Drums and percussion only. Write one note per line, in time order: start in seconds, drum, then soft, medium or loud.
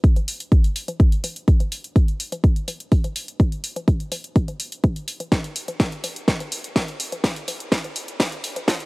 0.04 kick loud
0.04 closed hi-hat medium
0.16 closed hi-hat medium
0.16 low conga medium
0.28 open hi-hat loud
0.40 closed hi-hat medium
0.52 kick loud
0.52 closed hi-hat medium
0.52 low conga medium
0.64 closed hi-hat medium
0.76 open hi-hat loud
0.88 closed hi-hat medium
0.88 low conga medium
1.00 kick loud
1.00 closed hi-hat medium
1.12 closed hi-hat medium
1.24 open hi-hat loud
1.24 low conga medium
1.36 closed hi-hat medium
1.48 kick loud
1.48 closed hi-hat medium
1.60 closed hi-hat medium
1.60 low conga medium
1.72 open hi-hat loud
1.84 closed hi-hat medium
1.96 kick loud
1.96 closed hi-hat medium
1.96 low conga medium
2.08 closed hi-hat medium
2.20 open hi-hat loud
2.32 closed hi-hat medium
2.32 low conga medium
2.44 kick loud
2.44 closed hi-hat medium
2.56 closed hi-hat medium
2.68 open hi-hat loud
2.68 low conga medium
2.80 closed hi-hat medium
2.92 kick loud
2.92 open hi-hat medium
3.04 closed hi-hat medium
3.04 low conga medium
3.16 open hi-hat loud
3.28 closed hi-hat medium
3.40 kick loud
3.40 closed hi-hat medium
3.40 low conga medium
3.52 closed hi-hat medium
3.64 open hi-hat loud
3.76 closed hi-hat soft
3.76 low conga medium
3.88 kick loud
3.88 closed hi-hat medium
4.00 closed hi-hat medium
4.12 open hi-hat loud
4.12 low conga medium
4.24 closed hi-hat medium
4.36 kick loud
4.36 closed hi-hat medium
4.48 closed hi-hat medium
4.48 low conga medium
4.60 open hi-hat loud
4.72 closed hi-hat medium
4.84 kick loud
4.84 closed hi-hat medium
4.84 low conga medium
4.96 closed hi-hat medium
5.08 open hi-hat loud
5.20 closed hi-hat medium
5.20 low conga medium
5.32 kick loud
5.32 snare soft
5.32 closed hi-hat medium
5.32 low conga medium
5.44 closed hi-hat medium
5.56 open hi-hat loud
5.68 closed hi-hat medium
5.68 low conga medium
5.80 kick loud
5.80 snare soft
5.80 closed hi-hat medium
5.92 closed hi-hat medium
6.04 open hi-hat loud
6.04 low conga medium
6.16 closed hi-hat medium
6.28 kick loud
6.28 snare medium
6.28 closed hi-hat medium
6.40 closed hi-hat medium
6.40 low conga medium
6.52 open hi-hat loud
6.64 closed hi-hat medium
6.76 kick loud
6.76 snare medium
6.76 open hi-hat medium
6.76 low conga medium
6.88 closed hi-hat medium
7.00 open hi-hat loud
7.12 closed hi-hat medium
7.12 low conga medium
7.24 kick loud
7.24 snare medium
7.24 closed hi-hat medium
7.36 closed hi-hat medium
7.48 open hi-hat loud
7.48 low conga loud
7.60 closed hi-hat medium
7.72 kick loud
7.72 snare medium
7.72 closed hi-hat medium
7.84 closed hi-hat medium
7.84 low conga medium
7.96 open hi-hat loud
8.08 closed hi-hat medium
8.20 kick loud
8.20 snare medium
8.20 closed hi-hat medium
8.20 low conga loud
8.32 closed hi-hat medium
8.44 open hi-hat loud
8.56 closed hi-hat medium
8.56 low conga loud
8.68 kick loud
8.68 snare medium
8.68 closed hi-hat medium
8.80 closed hi-hat medium